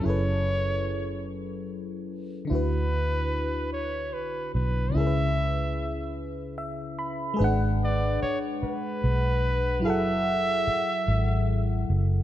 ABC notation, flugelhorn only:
X:1
M:6/8
L:1/8
Q:3/8=49
K:F#m
V:1 name="Flugelhorn"
c3 z3 | B3 c B B | e3 z3 | z d c B3 |
e4- e z |]